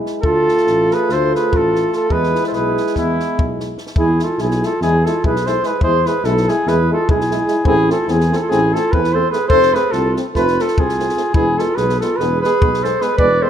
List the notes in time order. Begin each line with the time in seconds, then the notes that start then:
Already playing: G#3 E4
0.06 snare
0.22 D2 A3 F4 A4, kick
0.48 snare
0.57 snare
0.67 A1, snare
0.91 G#4 B4, snare
1.09 D2 A4 C5, snare
1.35 G#4 B4, snare
1.53 A1 F4 A4, kick
1.75 snare
1.93 F4 A4, snare
2.09 E2 G#3 E4 G#4 B4, kick
2.23 snare
2.35 snare
2.44 A4 C5, snare
2.53 B1 G#4 B4, snare
2.77 snare
2.87 snare
2.95 E2 B3 E4, kick, snare
3.20 snare
3.39 B1, kick
3.60 snare
3.78 snare
3.87 snare
3.96 E2 G#3 E4 G#4, kick
4.19 G#3 E4, snare
4.24 F4 A4
4.37 B1 G#3 E4 G#4, snare
4.41 E4
4.51 snare
4.62 G#3 E4 F4 A4, snare
4.81 E2 G#3 E4 G#4, snare
5.05 G#3 E4 F4 A4, snare
5.23 B1 G#3 E4 G#4 B4, kick
5.36 snare
5.45 G#3 E4 A4 C5, snare
5.63 G#3 E4 G#4 B4, snare
5.81 E2 G#3 E4 G#4 C5, kick
6.05 G#3 E4 G#4 B4, snare
6.23 B1 G#3 E4 A4, snare
6.37 snare
6.47 G#3 E4 G#4, snare
6.66 E2 G#3 E4 G#4 B4, snare
6.90 G#3 E4 F4 A4
7.09 B1 G#3 E4 G#4, kick
7.21 snare
7.31 G#3 E4, snare
7.48 G#3 E4, snare
7.65 A1 A3 C4 E4 G#4, kick
7.88 A3 C4 F4 A4, snare
8.06 E2 A3 C4 E4, snare
8.11 G#4
8.20 snare
8.31 A3 C4 F4, snare
8.35 E4 G#4 A4
8.40 F4 A4
8.49 A1 A3 C4 E4 G#4, snare
8.73 A3 C4 F4 A4, snare
8.92 E2 A3 C4 E4 B4, kick
9.04 snare
9.13 A3 C4 A4 C5
9.30 A3 C4 G#4 B4, snare
9.48 F1 A3 C4 A4 C5, kick
9.62 snare
9.73 A3 C4 G#4 B4, snare
9.91 C2 A3 C4 F4 A4, snare
10.15 A3 C4, snare
10.34 F1 A3 C4 F4 B4, kick, snare
10.48 snare
10.59 A3 C4 F4 A4, snare
10.68 snare
10.76 C2 A3 C4 F4 G#4, kick
10.89 snare
10.99 A3 C4, snare
11.09 snare
11.16 A3 C4, snare
11.34 E1 G#3 B3 E4 G#4, kick
11.58 G#3 B3 F4 A4, snare
11.75 B1 G#3 B3 G#4 B4, snare
11.89 snare
12.00 G#3 B3 F4 A4, snare
12.17 E1 G#3 B3 G#4 B4, snare
12.41 G#3 B3 B4, snare
12.46 G#4
12.61 B1 G#3 B3, kick
12.74 snare
12.83 G#3 B3 A4 C5, snare
13.01 G#3 B3 G#4 B4, snare
13.17 E1 G#3 B3 B4 D5, kick
13.42 G#3 B3 A4 C5